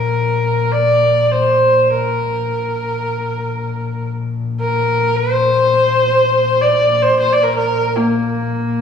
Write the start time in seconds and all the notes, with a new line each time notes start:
Already playing: A#1 A#4
0.72 D5
1.25 D5
1.31 C5
1.90 A#4
2.28 A#1
4.60 A#4
5.16 C5
6.61 D5
6.81 A#1
7.02 C5
7.19 C5
7.33 D5
7.43 A#4
7.55 A#4
7.96 A#3